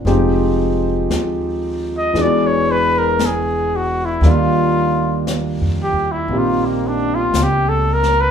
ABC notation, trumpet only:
X:1
M:4/4
L:1/16
Q:"Swing" 1/4=58
K:Eblyd
V:1 name="Trumpet"
z6 z e d _d =B _B ^G2 ^F =E | F4 z2 G =E F B, D F G A B _c |]